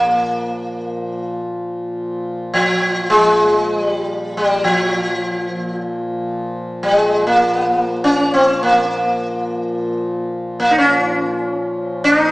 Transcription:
Already playing: A#2 F3 A#3
2.54 F3
3.10 G#3
3.85 G3
4.37 G3
4.64 F3
5.49 A#2 F3
6.83 G3
6.95 G#3
7.27 A#3
8.04 C#4
8.34 C4
8.63 A#3
10.60 A#3
10.71 D#4
10.78 C#4
12.04 D#4

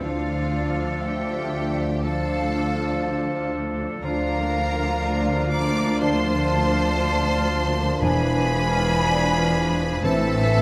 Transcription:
Already playing: A4
0.01 D2 D3 F3 D4 F4 A4 D5 F5
0.37 D4
0.70 F4
1.03 G4 A4 E5 G5
1.37 F4
1.71 D4
2.03 F3 A3 D4 A4 F5 A5
2.36 D4
2.69 F4
3.03 A4
3.37 F4
3.70 D4
4.02 D2 D3 F3 D4 F4 A#4 F5 A#5
4.37 A#3
4.70 F4
5.03 D5
5.36 F4
5.51 D5 A#5 D6
5.68 A#3
6.00 D3 F3 D4 C5 A5 C6
6.34 D4
6.66 F4
7.00 D5
7.34 F4
7.68 A#3
8.01 E1 E2 E3 F3 D4 G#4 B4 G#5 B5
8.36 G#3
8.71 F4
9.04 D5
9.38 F4
9.71 G#3
10.03 A1 A2 E3 C4 A4 E5 A5
10.38 A3

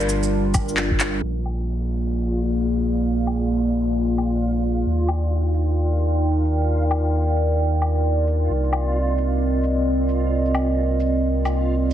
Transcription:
Already playing: G1 G3 D4 F4 A#4
0.00 shaker
0.09 cabasa, shaker
0.23 shaker
0.54 kick, cabasa, low woodblock, shaker
0.69 cabasa
0.77 clap
0.91 kick
1.00 clap, cabasa, shaker
1.22 A#1 A#3 F4 G#4 D5, downlifter
1.45 low woodblock, shaker
1.91 shaker
2.36 shaker
2.81 shaker
3.18 shaker
3.27 low woodblock, shaker
3.72 shaker
4.18 low woodblock, shaker
4.63 shaker
4.86 D#2 D#4 A#4 G5
5.00 shaker
5.08 low woodblock, shaker
5.54 shaker
5.99 shaker
6.45 shaker
6.82 shaker
6.91 low woodblock, shaker
7.28 shaker
7.36 shaker
7.82 low woodblock, shaker
8.27 shaker
8.49 C2 C4 D#5
8.64 shaker
8.73 low woodblock, shaker
9.18 shaker
9.63 shaker
10.09 shaker
10.45 shaker
10.55 low woodblock, shaker
11.00 shaker
11.45 low woodblock, shaker

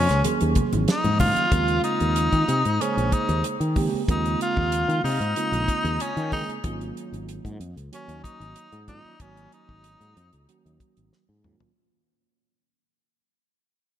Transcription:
Already playing: C#4
0.09 C#2, snare, closed hi-hat
0.24 D#3 F#3 A#3 C#4 G#4, closed hi-hat, high conga
0.41 D#2, closed hi-hat
0.55 kick, closed hi-hat, low conga
0.73 G#1, closed hi-hat, high conga
0.88 D#4, snare, closed hi-hat
1.04 G#2, closed hi-hat, high conga
1.19 D#3 F#3 A#3 C#4 F4, kick, open hi-hat, high conga, low conga
1.36 muted fretless electric bass stroke, closed hi-hat
1.52 D#2 C#3 G#3 A#3 C4 F4, kick, closed hi-hat
1.68 closed hi-hat
1.84 D#4, closed hi-hat
2.00 D#2, closed hi-hat
2.16 closed hi-hat
2.32 D#3, kick, closed hi-hat
2.48 C3, closed hi-hat
2.65 G#2, closed hi-hat
2.81 C#3 G#3 A#3 C#4 G#4 C5, closed hi-hat
2.97 A#1, closed hi-hat
3.12 D#4, kick, closed hi-hat
3.29 D#2, closed hi-hat
3.44 closed hi-hat
3.60 D#3, closed hi-hat
3.76 C#3 G#3 A#3 C4 G4, kick, open hi-hat
3.94 muted fretless electric bass stroke
4.08 D#2 C#3 G#3 A#3 C4 D#4 F4, kick, closed hi-hat
4.25 closed hi-hat
4.41 F4, closed hi-hat
4.57 D#2, kick
4.72 closed hi-hat
4.88 D#3, closed hi-hat
5.04 C3 D#4, open hi-hat
5.20 G#2, closed hi-hat
5.36 C#3 G#3 A#3 C4 F4, closed hi-hat
5.52 A#1, closed hi-hat
5.68 kick, closed hi-hat
5.84 D#2, closed hi-hat
6.00 C#4, closed hi-hat
6.17 D#3, closed hi-hat
6.32 C#3 G#3 A#3 C4 D#4 G#4, kick, open hi-hat
6.48 muted fretless electric bass stroke, closed hi-hat
6.64 G#1 D#3 F#3 A#3 C#4 F4, kick, closed hi-hat
6.81 closed hi-hat
6.97 closed hi-hat
7.12 G#1, closed hi-hat
7.29 closed hi-hat
7.45 G#2, kick, closed hi-hat
7.60 F2, closed hi-hat
7.76 C#2, closed hi-hat
7.92 D#3 F#3 A#3 C#4 F#4, closed hi-hat
8.08 D#2, closed hi-hat
8.24 D#4, kick, closed hi-hat
8.40 G#1, closed hi-hat
8.56 closed hi-hat
8.72 G#2, closed hi-hat
8.88 D#3 F#3 A#3 C#4 D#4 F4, kick, closed hi-hat
9.05 muted fretless electric bass stroke
9.20 G#1 D#3 F#3 A#3 C#4 F#4, kick, closed hi-hat
9.37 closed hi-hat
9.52 D#4, closed hi-hat
9.69 G#1, kick
9.84 closed hi-hat
10.01 G#2, closed hi-hat
10.17 F2, closed hi-hat
10.33 C#2, closed hi-hat
10.49 D#3 F#3 A#3 C#4 F#4, closed hi-hat
10.66 D#2, closed hi-hat
10.80 kick, closed hi-hat
10.97 G#1, closed hi-hat
11.13 snare
11.29 G#2
11.44 D#3 F#3 A#3 C#4 F4, mid tom
11.60 floor tom

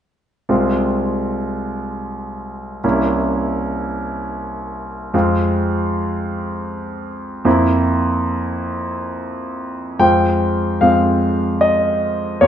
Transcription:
0.49 C2 G#3 C4 F4
2.84 C2 A#3 C#4 E4
5.14 F2 G#3 C4 F4
7.45 F2 A#3 C4 E4
9.99 F2 G#3 C4 F4 G5
10.81 F2 G#3 C4 F4 F5
11.61 D#5
12.41 F2 A#3 C#4 G4 C#5

